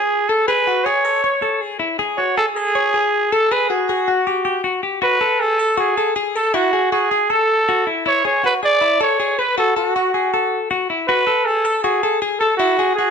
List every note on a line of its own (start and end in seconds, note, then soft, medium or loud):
0.00 0.26 G#4 medium
0.00 0.30 G#4 loud
0.29 0.47 A4 medium
0.29 0.48 A4 medium
0.47 0.67 G#4 loud
0.47 0.86 B4 loud
0.67 0.86 F#4 medium
0.85 1.05 G#4 medium
0.85 1.61 C#5 medium
1.05 1.23 A4 medium
1.24 1.42 C#5 medium
1.42 1.61 A4 medium
1.61 1.79 G#4 medium
1.79 1.99 E4 medium
1.99 2.18 G#4 loud
2.18 2.37 F#4 medium
2.18 2.35 C#5 medium
2.37 2.56 G#4 medium
2.37 2.46 A4 loud
2.56 3.34 G#4 loud
2.56 2.75 A4 medium
2.75 2.94 C#5 medium
2.94 3.30 G#4 medium
3.32 3.53 A4 loud
3.32 3.51 A4 medium
3.51 3.70 G#4 loud
3.51 3.70 B4 loud
3.70 3.89 F#4 medium
3.70 3.88 G#4 medium
3.89 4.61 F#4 medium
3.89 4.08 G#4 medium
4.08 4.27 F#4 medium
4.27 4.44 G4 medium
4.45 4.64 G4 medium
4.64 4.83 F#4 medium
4.83 5.01 G4 medium
5.02 5.20 F#4 medium
5.02 5.42 B4 loud
5.21 5.40 A4 medium
5.40 5.59 G#4 medium
5.40 5.78 A4 medium
5.59 5.77 A4 medium
5.77 5.97 F#4 medium
5.77 6.14 G#4 medium
5.97 6.16 A4 medium
6.16 6.36 G#4 medium
6.36 6.54 A4 medium
6.36 6.56 A4 medium
6.54 6.72 E4 loud
6.54 6.92 F#4 loud
6.73 6.92 G#4 medium
6.92 7.11 F#4 medium
6.92 7.33 G#4 medium
7.11 7.30 G#4 medium
7.30 7.66 A4 medium
7.30 7.87 A4 loud
7.69 7.86 F#4 medium
7.87 8.05 E4 medium
8.06 8.24 E4 medium
8.06 8.24 C#5 loud
8.25 8.44 G#4 medium
8.25 8.43 C#5 loud
8.44 8.62 F#4 medium
8.44 8.54 B4 loud
8.63 8.81 G#4 medium
8.63 8.99 D5 loud
8.81 9.00 E4 medium
9.01 9.19 A4 medium
9.01 9.40 C#5 loud
9.20 9.38 G#4 medium
9.39 9.57 B4 medium
9.39 9.57 B4 loud
9.58 9.76 F#4 medium
9.58 9.75 A4 loud
9.76 10.59 F#4 medium
9.76 9.95 A4 medium
9.96 10.14 F#4 medium
10.14 10.33 G#4 medium
10.34 10.69 A4 medium
10.71 10.89 F#4 medium
10.90 11.08 E4 medium
11.08 11.26 F#4 loud
11.08 11.47 B4 loud
11.27 11.46 A4 medium
11.45 11.65 G#4 medium
11.45 11.82 A4 medium
11.65 11.84 A4 medium
11.83 12.03 F#4 medium
11.83 12.19 G#4 medium
12.03 12.21 A4 medium
12.22 12.40 G#4 medium
12.40 12.56 A4 medium
12.40 12.59 A4 medium
12.57 12.78 E4 loud
12.57 12.94 F#4 loud
12.79 12.98 G#4 medium
12.96 13.10 F#4 medium
12.96 13.10 G#4 loud